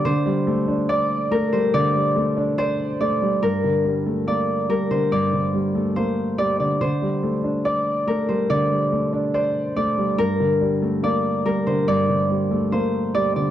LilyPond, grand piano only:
\new Staff \with { instrumentName = "Grand piano" } { \clef bass \time 4/4 \key g \minor \tempo 4 = 142 d8 g8 a8 d'8 d''4 a8 g8 | d8 g8 a8 d'8 d''4 a8 g8 | g,8 d8 g8 a8 bes4 g8 d8 | g,8 d8 g8 a8 bes4 g8 d8 |
d8 g8 a8 d'8 d''4 a8 g8 | d8 g8 a8 d'8 d''4 a8 g8 | g,8 d8 g8 a8 bes4 g8 d8 | g,8 d8 g8 a8 bes4 g8 d8 | }